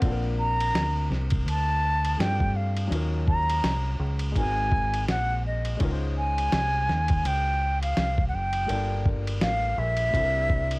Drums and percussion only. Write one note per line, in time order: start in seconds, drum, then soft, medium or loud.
0.02 kick loud
0.02 ride medium
0.60 ride medium
0.75 snare loud
0.75 hi-hat pedal medium
0.75 ride medium
1.12 snare soft
1.30 kick medium
1.30 ride medium
1.48 ride medium
2.05 ride medium
2.20 snare medium
2.20 hi-hat pedal soft
2.20 ride medium
2.40 kick medium
2.77 ride soft
2.92 ride medium
3.28 kick medium
3.49 ride medium
3.64 snare loud
3.64 hi-hat pedal medium
3.64 ride medium
4.19 ride medium
4.36 kick medium
4.36 ride medium
4.72 kick loud
4.94 ride medium
5.08 snare medium
5.08 hi-hat pedal soft
5.08 ride medium
5.65 ride soft
5.80 kick loud
5.80 ride medium
6.38 ride medium
6.52 snare loud
6.52 hi-hat pedal medium
6.52 ride medium
6.89 snare soft
7.08 kick medium
7.08 ride medium
7.25 ride medium
7.83 ride medium
7.97 snare medium
7.97 hi-hat pedal soft
7.97 ride medium
8.18 kick medium
8.53 ride medium
8.69 ride medium
9.06 kick medium
9.27 ride medium
9.41 snare loud
9.41 hi-hat pedal medium
9.41 ride medium
9.97 ride medium
10.14 kick medium
10.14 ride medium
10.50 kick medium
10.71 ride medium